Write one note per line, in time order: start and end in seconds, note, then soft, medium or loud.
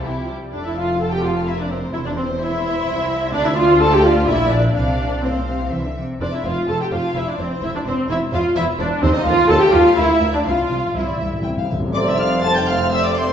0.03 0.11 C2 medium
0.03 0.11 C3 soft
0.03 0.15 E3 soft
0.03 0.31 E4 medium
0.03 0.32 G4 medium
0.16 0.28 F3 soft
0.28 0.52 G3 soft
0.52 1.89 F1 medium
0.52 1.89 F2 medium
0.52 0.57 D4 medium
0.52 0.97 A4 soft
0.52 0.63 D5 medium
0.65 0.77 E4 medium
0.65 0.76 E5 soft
0.76 1.00 F4 medium
0.76 1.00 F5 medium
1.00 1.46 A4 medium
1.00 1.12 A4 medium
1.00 1.12 A5 medium
1.11 1.24 G4 medium
1.11 1.23 G5 medium
1.24 1.47 F4 medium
1.24 1.47 F5 medium
1.47 1.59 E4 medium
1.47 1.93 A#4 soft
1.47 1.59 E5 medium
1.58 1.64 D4 medium
1.58 1.70 D5 medium
1.70 1.78 C4 medium
1.70 1.93 C5 medium
1.93 2.87 E1 medium
1.93 2.87 E2 medium
1.93 1.98 E4 medium
1.93 2.40 C5 medium
1.93 1.98 E5 medium
2.05 2.11 D4 medium
2.05 2.10 D5 medium
2.16 2.25 C4 medium
2.16 2.39 C5 medium
2.40 3.32 E4 medium
2.40 3.32 C5 medium
2.40 3.34 E5 medium
2.87 3.33 C2 medium
3.33 4.28 D2 medium
3.33 3.45 D4 loud
3.33 3.45 D5 medium
3.33 3.80 D5 medium
3.45 3.58 E4 medium
3.45 3.57 E5 medium
3.56 3.80 F4 loud
3.56 3.80 F5 medium
3.80 3.93 A4 loud
3.80 4.27 D5 medium
3.80 3.92 A5 loud
3.92 4.05 G4 medium
3.92 4.04 G5 medium
4.04 4.28 F4 medium
4.04 4.28 F5 medium
4.28 4.75 A#1 medium
4.28 4.75 A#2 medium
4.28 4.51 E4 medium
4.28 4.74 D5 medium
4.28 4.51 E5 medium
4.51 4.74 D4 medium
4.51 4.74 D5 medium
4.75 5.70 C2 medium
4.75 5.18 C3 medium
4.75 5.22 D4 medium
4.75 5.22 D5 medium
4.75 5.22 F5 soft
5.23 5.28 A2 medium
5.23 5.72 C4 medium
5.23 5.72 C5 medium
5.23 5.71 F5 soft
5.36 5.48 A#2 medium
5.47 5.71 C3 medium
5.71 5.80 C2 medium
5.71 5.84 E3 medium
5.71 6.01 E5 soft
5.85 5.97 D3 medium
5.96 6.20 C3 soft
6.21 6.29 F1 soft
6.21 6.29 F2 medium
6.21 6.25 D4 medium
6.21 6.29 C5 soft
6.21 6.32 D5 medium
6.33 6.45 E4 medium
6.33 6.45 E5 soft
6.45 6.53 F1 medium
6.45 6.53 F2 medium
6.45 6.68 F4 medium
6.45 6.54 C5 soft
6.45 6.69 F5 medium
6.68 6.77 F1 medium
6.68 6.76 F2 medium
6.68 6.80 A4 medium
6.68 6.76 C5 soft
6.68 6.80 A5 medium
6.81 6.92 G4 medium
6.81 6.85 G5 medium
6.92 7.00 F1 medium
6.92 7.00 F2 medium
6.92 7.15 F4 medium
6.92 7.00 C5 soft
6.92 7.15 F5 medium
7.15 7.23 F1 medium
7.15 7.23 F2 medium
7.15 7.27 E4 medium
7.15 7.24 C5 medium
7.15 7.27 E5 medium
7.28 7.39 D4 medium
7.28 7.39 D5 medium
7.38 7.47 F1 medium
7.38 7.47 F2 medium
7.38 7.62 C4 medium
7.38 7.46 C5 soft
7.38 7.63 C5 medium
7.62 7.70 E1 medium
7.62 7.71 E2 medium
7.62 7.67 E4 medium
7.62 7.70 C5 medium
7.62 7.75 E5 medium
7.75 7.80 D4 medium
7.75 7.80 D5 medium
7.85 7.94 E1 medium
7.85 7.94 E2 medium
7.85 8.09 C4 medium
7.85 7.93 C5 medium
7.85 7.95 C5 medium
8.08 8.18 E1 medium
8.08 8.17 E2 medium
8.08 8.17 E4 medium
8.08 8.16 C5 medium
8.08 8.19 E5 medium
8.32 8.41 E1 medium
8.32 8.41 E2 medium
8.32 8.56 F4 medium
8.32 8.40 C5 medium
8.32 8.42 F5 medium
8.56 8.64 E1 medium
8.56 8.64 E2 medium
8.56 8.64 E4 medium
8.56 8.64 C5 medium
8.56 8.64 E5 loud
8.79 8.88 E1 medium
8.79 8.87 E2 medium
8.79 9.02 D4 medium
8.79 8.87 C5 medium
8.79 8.87 D5 medium
9.02 9.11 D#2 medium
9.02 9.14 C4 loud
9.02 9.11 A4 medium
9.02 9.15 C5 medium
9.14 9.27 D#4 loud
9.14 9.26 D#5 medium
9.24 9.34 D#2 medium
9.24 9.49 F4 loud
9.24 9.34 A4 medium
9.24 9.49 F5 medium
9.49 9.57 D#2 medium
9.49 9.58 D#2 medium
9.49 9.61 A4 loud
9.49 9.57 A4 medium
9.49 9.61 A5 loud
9.61 9.73 G4 loud
9.61 9.73 G5 medium
9.72 9.81 D#2 medium
9.72 9.97 F4 loud
9.72 9.82 A4 medium
9.72 9.97 F5 medium
9.96 10.05 D2 medium
9.96 10.32 E4 medium
9.96 10.05 A#4 medium
9.96 10.34 E5 medium
10.21 10.29 D2 medium
10.21 10.29 A#4 medium
10.33 10.38 D4 medium
10.33 10.46 D5 medium
10.45 10.54 C2 medium
10.45 10.53 C3 soft
10.45 10.95 F4 medium
10.45 10.54 C5 medium
10.45 10.95 F5 medium
10.54 10.60 C3 soft
10.62 10.68 C3 soft
10.69 10.78 C2 medium
10.69 10.79 C2 medium
10.69 10.76 C3 soft
10.69 10.78 C5 soft
10.78 10.84 C3 soft
10.85 10.92 C3 soft
10.93 11.04 C2 medium
10.93 11.00 C3 soft
10.93 11.46 E4 medium
10.93 11.07 C5 medium
10.93 11.45 E5 soft
11.02 11.09 C3 soft
11.08 11.16 C3 medium
11.08 11.21 D5 medium
11.18 11.29 C2 soft
11.18 11.24 C3 soft
11.18 11.28 E5 medium
11.26 11.32 C3 medium
11.33 11.40 C3 medium
11.41 11.47 C3 medium
11.41 11.50 G5 medium
11.46 11.54 C2 soft
11.46 11.56 C3 medium
11.57 11.63 C3 medium
11.57 11.71 F5 soft
11.64 11.71 C3 medium
11.71 11.79 C2 soft
11.71 11.80 C2 soft
11.71 11.79 C3 medium
11.71 11.79 E5 soft
11.80 11.87 C3 medium
11.88 11.95 C3 medium
11.95 13.33 F1 medium
11.95 13.33 F2 medium
11.95 12.41 C3 medium
11.95 13.33 A3 medium
11.95 13.33 C4 medium
11.95 12.41 A4 medium
11.95 12.41 C5 medium
11.95 12.01 D5 medium
11.95 12.07 D5 medium
11.95 12.41 D5 medium
11.95 12.00 D6 medium
12.08 12.20 E5 medium
12.08 12.21 E6 medium
12.19 12.43 F5 medium
12.19 12.44 F5 medium
12.19 12.44 F6 medium
12.43 13.33 C3 medium
12.43 13.33 A4 medium
12.43 13.33 C5 medium
12.43 12.92 C5 medium
12.43 12.56 A5 medium
12.43 12.56 A6 medium
12.55 12.68 G5 medium
12.55 12.69 G6 medium
12.68 12.92 F5 medium
12.68 12.92 F6 medium
12.91 13.33 D5 medium
12.91 13.03 E5 medium
12.91 13.04 E5 medium
12.91 13.04 E6 loud
13.03 13.15 D5 medium
13.03 13.09 D5 medium
13.03 13.16 D6 medium
13.15 13.33 C5 medium
13.15 13.33 C6 medium